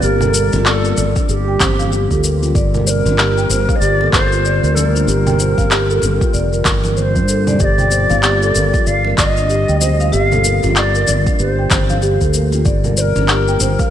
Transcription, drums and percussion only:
0.02 shaker
0.21 low conga, shaker
0.34 shaker
0.53 muted conga, shaker
0.66 clap, shaker
0.85 shaker
0.97 muted conga, shaker
1.16 kick, shaker
1.29 shaker
1.60 kick, clap, high conga, shaker
1.79 muted conga, high conga, shaker
1.92 shaker
2.11 kick, shaker
2.24 shaker
2.43 muted conga, shaker
2.55 kick, shaker
2.74 low conga, shaker
2.87 shaker
3.06 muted conga, shaker
3.18 clap, shaker
3.38 shaker
3.50 muted conga, shaker
3.69 kick, muted conga, high conga, shaker
3.82 shaker
4.01 muted conga
4.13 kick, clap, shaker
4.32 shaker
4.45 shaker
4.64 shaker
4.77 muted conga, shaker
4.95 high conga, shaker
5.08 shaker
5.27 low conga, shaker
5.40 shaker
5.58 kick, muted conga, shaker
5.71 clap, shaker
5.90 shaker
6.02 muted conga, shaker
6.21 kick, shaker
6.34 shaker
6.53 shaker
6.65 kick, clap, high conga, shaker
6.84 muted conga, high conga, shaker
6.97 shaker
7.16 kick, shaker
7.28 shaker
7.47 muted conga, low conga, shaker
7.60 kick, shaker
7.78 low conga, shaker
7.91 shaker
8.09 muted conga, shaker
8.23 clap, shaker
8.42 shaker
8.54 muted conga, shaker
8.74 kick, muted conga, high conga, shaker
8.87 shaker
9.05 muted conga
9.18 kick, clap, shaker
9.37 shaker
9.50 shaker
9.69 shaker
9.81 muted conga, shaker
10.00 high conga, shaker
10.13 shaker
10.32 low conga, shaker
10.44 shaker
10.63 muted conga, shaker
10.76 clap, shaker
10.95 shaker
11.07 muted conga, shaker
11.27 kick, shaker
11.39 shaker
11.70 kick, clap, high conga, shaker
11.90 muted conga, high conga, shaker
12.02 shaker
12.21 kick, shaker
12.34 shaker
12.52 muted conga, shaker
12.65 kick, shaker
12.84 low conga, shaker
12.97 shaker
13.16 muted conga, shaker
13.28 clap, shaker
13.48 shaker
13.60 muted conga, shaker
13.79 kick, muted conga, high conga, shaker

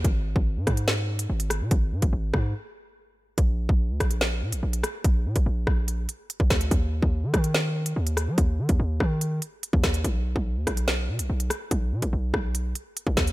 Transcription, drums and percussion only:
0.05 kick, closed hi-hat
0.36 kick
0.67 kick, cross-stick, closed hi-hat
0.77 closed hi-hat
0.88 snare
1.19 closed hi-hat
1.40 closed hi-hat
1.50 cross-stick, closed hi-hat
1.71 kick, closed hi-hat
2.02 kick, closed hi-hat
2.34 kick, cross-stick
3.38 kick, closed hi-hat
3.69 kick
4.00 kick, cross-stick, closed hi-hat
4.11 closed hi-hat
4.21 snare
4.52 closed hi-hat
4.73 closed hi-hat
4.83 cross-stick, closed hi-hat
5.04 kick, closed hi-hat
5.36 kick, closed hi-hat
5.67 kick, cross-stick
5.88 closed hi-hat
6.09 closed hi-hat
6.30 closed hi-hat
6.40 kick
6.50 kick, cross-stick, snare, closed hi-hat
6.61 closed hi-hat
6.71 kick, closed hi-hat
7.02 kick
7.34 kick, cross-stick, closed hi-hat
7.44 closed hi-hat
7.55 snare
7.86 closed hi-hat
8.07 closed hi-hat
8.17 cross-stick, closed hi-hat
8.38 kick, closed hi-hat
8.69 kick, closed hi-hat
9.00 kick, cross-stick
9.21 closed hi-hat
9.42 closed hi-hat
9.63 closed hi-hat
9.73 kick
9.84 kick, cross-stick, snare, closed hi-hat
9.94 closed hi-hat
10.05 kick, closed hi-hat
10.36 kick
10.67 kick, cross-stick, closed hi-hat
10.77 closed hi-hat
10.88 snare
11.19 closed hi-hat
11.40 closed hi-hat
11.50 cross-stick, closed hi-hat
11.71 kick, closed hi-hat
12.02 kick, closed hi-hat
12.34 kick, cross-stick
12.55 closed hi-hat
12.75 closed hi-hat
12.97 closed hi-hat
13.07 kick
13.17 kick, cross-stick, snare, closed hi-hat
13.27 closed hi-hat

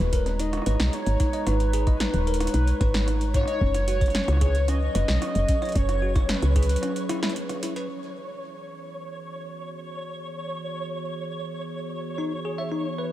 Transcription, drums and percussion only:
0.13 kick, closed hi-hat
0.26 cross-stick, closed hi-hat
0.39 closed hi-hat
0.53 cross-stick, closed hi-hat
0.57 cross-stick
0.62 cross-stick
0.66 cross-stick, closed hi-hat
0.71 cross-stick
0.75 cross-stick
0.80 snare, closed hi-hat
0.93 cross-stick, closed hi-hat
1.06 closed hi-hat
1.20 kick, cross-stick, closed hi-hat
1.33 closed hi-hat
1.47 cross-stick, closed hi-hat
1.60 closed hi-hat
1.73 closed hi-hat
1.87 kick, cross-stick, closed hi-hat
2.00 snare, closed hi-hat
2.07 cross-stick
2.14 closed hi-hat
2.27 closed hi-hat
2.34 closed hi-hat
2.40 cross-stick, closed hi-hat
2.47 closed hi-hat
2.54 closed hi-hat
2.67 closed hi-hat
2.81 kick, cross-stick, closed hi-hat
2.94 snare, closed hi-hat
3.08 cross-stick, closed hi-hat
3.21 closed hi-hat
3.34 kick, cross-stick, closed hi-hat
3.37 cross-stick
3.39 cross-stick
3.41 cross-stick
3.43 cross-stick
3.45 cross-stick, closed hi-hat
3.61 kick
3.74 cross-stick, closed hi-hat
3.88 closed hi-hat
4.01 kick, closed hi-hat
4.06 cross-stick, closed hi-hat
4.10 closed hi-hat
4.15 snare, closed hi-hat
4.24 closed hi-hat
4.28 cross-stick, closed hi-hat
4.32 cross-stick
4.37 cross-stick
4.41 kick, cross-stick, closed hi-hat
4.46 cross-stick
4.50 cross-stick
4.55 closed hi-hat
4.68 cross-stick, closed hi-hat
4.95 cross-stick, closed hi-hat
5.08 snare
5.22 cross-stick, closed hi-hat
5.35 closed hi-hat
5.48 kick, closed hi-hat
5.62 cross-stick, closed hi-hat
5.65 closed hi-hat
5.69 closed hi-hat
5.72 kick, closed hi-hat
5.75 closed hi-hat
5.89 cross-stick, closed hi-hat
6.15 kick, cross-stick, closed hi-hat
6.29 snare, closed hi-hat
6.42 closed hi-hat
6.56 kick, cross-stick, closed hi-hat
6.63 closed hi-hat
6.69 closed hi-hat
6.76 closed hi-hat
6.83 cross-stick, closed hi-hat
6.96 closed hi-hat
7.09 cross-stick, closed hi-hat
7.23 snare
7.29 closed hi-hat
7.36 closed hi-hat
7.49 cross-stick, closed hi-hat
7.63 closed hi-hat
7.76 closed hi-hat

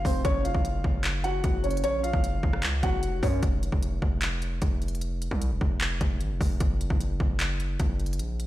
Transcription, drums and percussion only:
0.05 kick, open hi-hat
0.25 kick, closed hi-hat
0.45 closed hi-hat
0.55 kick
0.65 closed hi-hat
0.84 kick
1.04 clap, closed hi-hat
1.24 closed hi-hat
1.44 kick, closed hi-hat
1.64 closed hi-hat
1.71 closed hi-hat
1.77 closed hi-hat
1.84 closed hi-hat
2.04 closed hi-hat
2.13 kick
2.24 closed hi-hat
2.43 kick
2.53 cross-stick
2.63 clap, closed hi-hat
2.83 kick, closed hi-hat
3.03 closed hi-hat
3.23 kick, open hi-hat
3.43 kick, closed hi-hat
3.63 closed hi-hat
3.72 kick
3.83 closed hi-hat
4.02 kick
4.21 clap, closed hi-hat
4.42 closed hi-hat
4.62 kick, closed hi-hat
4.82 closed hi-hat
4.88 closed hi-hat
4.95 closed hi-hat
5.01 closed hi-hat
5.22 closed hi-hat
5.31 kick
5.42 closed hi-hat
5.61 kick
5.80 clap, closed hi-hat
6.01 kick, closed hi-hat
6.21 closed hi-hat
6.41 kick, open hi-hat
6.60 kick, closed hi-hat
6.81 closed hi-hat
6.90 kick
7.01 closed hi-hat
7.20 kick
7.39 clap, closed hi-hat
7.60 closed hi-hat
7.80 kick, closed hi-hat
8.00 closed hi-hat
8.06 closed hi-hat
8.13 closed hi-hat
8.19 closed hi-hat
8.40 closed hi-hat

